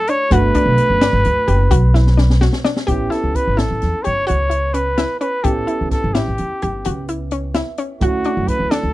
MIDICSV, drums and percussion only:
0, 0, Header, 1, 2, 480
1, 0, Start_track
1, 0, Tempo, 466926
1, 324, Time_signature, 11, 3, 24, 8
1, 9184, End_track
2, 0, Start_track
2, 0, Title_t, "Drums"
2, 77, Note_on_c, 9, 42, 57
2, 180, Note_off_c, 9, 42, 0
2, 317, Note_on_c, 9, 42, 70
2, 320, Note_on_c, 9, 36, 91
2, 420, Note_off_c, 9, 42, 0
2, 423, Note_off_c, 9, 36, 0
2, 560, Note_on_c, 9, 36, 57
2, 561, Note_on_c, 9, 42, 54
2, 663, Note_off_c, 9, 36, 0
2, 664, Note_off_c, 9, 42, 0
2, 799, Note_on_c, 9, 42, 55
2, 902, Note_off_c, 9, 42, 0
2, 1042, Note_on_c, 9, 38, 106
2, 1042, Note_on_c, 9, 42, 78
2, 1145, Note_off_c, 9, 38, 0
2, 1145, Note_off_c, 9, 42, 0
2, 1281, Note_on_c, 9, 42, 56
2, 1383, Note_off_c, 9, 42, 0
2, 1521, Note_on_c, 9, 42, 61
2, 1624, Note_off_c, 9, 42, 0
2, 1760, Note_on_c, 9, 36, 91
2, 1761, Note_on_c, 9, 42, 71
2, 1863, Note_off_c, 9, 36, 0
2, 1863, Note_off_c, 9, 42, 0
2, 2000, Note_on_c, 9, 38, 56
2, 2102, Note_off_c, 9, 38, 0
2, 2126, Note_on_c, 9, 38, 46
2, 2229, Note_off_c, 9, 38, 0
2, 2241, Note_on_c, 9, 38, 66
2, 2344, Note_off_c, 9, 38, 0
2, 2365, Note_on_c, 9, 38, 60
2, 2467, Note_off_c, 9, 38, 0
2, 2481, Note_on_c, 9, 38, 72
2, 2584, Note_off_c, 9, 38, 0
2, 2598, Note_on_c, 9, 38, 60
2, 2701, Note_off_c, 9, 38, 0
2, 2721, Note_on_c, 9, 38, 89
2, 2824, Note_off_c, 9, 38, 0
2, 2842, Note_on_c, 9, 38, 86
2, 2944, Note_off_c, 9, 38, 0
2, 2961, Note_on_c, 9, 42, 69
2, 2962, Note_on_c, 9, 36, 87
2, 3064, Note_off_c, 9, 42, 0
2, 3065, Note_off_c, 9, 36, 0
2, 3207, Note_on_c, 9, 38, 27
2, 3207, Note_on_c, 9, 42, 46
2, 3309, Note_off_c, 9, 38, 0
2, 3309, Note_off_c, 9, 42, 0
2, 3442, Note_on_c, 9, 36, 52
2, 3450, Note_on_c, 9, 42, 50
2, 3545, Note_off_c, 9, 36, 0
2, 3552, Note_off_c, 9, 42, 0
2, 3686, Note_on_c, 9, 38, 84
2, 3686, Note_on_c, 9, 42, 60
2, 3789, Note_off_c, 9, 38, 0
2, 3789, Note_off_c, 9, 42, 0
2, 3925, Note_on_c, 9, 38, 26
2, 3925, Note_on_c, 9, 42, 50
2, 4028, Note_off_c, 9, 38, 0
2, 4028, Note_off_c, 9, 42, 0
2, 4161, Note_on_c, 9, 42, 51
2, 4264, Note_off_c, 9, 42, 0
2, 4399, Note_on_c, 9, 42, 62
2, 4502, Note_off_c, 9, 42, 0
2, 4636, Note_on_c, 9, 42, 48
2, 4739, Note_off_c, 9, 42, 0
2, 4876, Note_on_c, 9, 42, 54
2, 4979, Note_off_c, 9, 42, 0
2, 5117, Note_on_c, 9, 38, 79
2, 5117, Note_on_c, 9, 42, 63
2, 5220, Note_off_c, 9, 38, 0
2, 5220, Note_off_c, 9, 42, 0
2, 5358, Note_on_c, 9, 42, 55
2, 5461, Note_off_c, 9, 42, 0
2, 5596, Note_on_c, 9, 42, 73
2, 5599, Note_on_c, 9, 36, 87
2, 5699, Note_off_c, 9, 42, 0
2, 5702, Note_off_c, 9, 36, 0
2, 5838, Note_on_c, 9, 42, 51
2, 5941, Note_off_c, 9, 42, 0
2, 6079, Note_on_c, 9, 36, 62
2, 6080, Note_on_c, 9, 38, 26
2, 6080, Note_on_c, 9, 42, 49
2, 6182, Note_off_c, 9, 36, 0
2, 6183, Note_off_c, 9, 38, 0
2, 6183, Note_off_c, 9, 42, 0
2, 6322, Note_on_c, 9, 38, 85
2, 6322, Note_on_c, 9, 42, 72
2, 6425, Note_off_c, 9, 38, 0
2, 6425, Note_off_c, 9, 42, 0
2, 6559, Note_on_c, 9, 42, 55
2, 6662, Note_off_c, 9, 42, 0
2, 6806, Note_on_c, 9, 42, 52
2, 6908, Note_off_c, 9, 42, 0
2, 7039, Note_on_c, 9, 42, 67
2, 7142, Note_off_c, 9, 42, 0
2, 7283, Note_on_c, 9, 42, 53
2, 7386, Note_off_c, 9, 42, 0
2, 7515, Note_on_c, 9, 42, 48
2, 7618, Note_off_c, 9, 42, 0
2, 7756, Note_on_c, 9, 38, 76
2, 7756, Note_on_c, 9, 42, 58
2, 7859, Note_off_c, 9, 38, 0
2, 7859, Note_off_c, 9, 42, 0
2, 7994, Note_on_c, 9, 42, 54
2, 8097, Note_off_c, 9, 42, 0
2, 8235, Note_on_c, 9, 42, 63
2, 8238, Note_on_c, 9, 36, 94
2, 8338, Note_off_c, 9, 42, 0
2, 8341, Note_off_c, 9, 36, 0
2, 8474, Note_on_c, 9, 42, 45
2, 8577, Note_off_c, 9, 42, 0
2, 8719, Note_on_c, 9, 36, 51
2, 8720, Note_on_c, 9, 42, 49
2, 8821, Note_off_c, 9, 36, 0
2, 8823, Note_off_c, 9, 42, 0
2, 8961, Note_on_c, 9, 38, 87
2, 8961, Note_on_c, 9, 42, 69
2, 9064, Note_off_c, 9, 38, 0
2, 9064, Note_off_c, 9, 42, 0
2, 9184, End_track
0, 0, End_of_file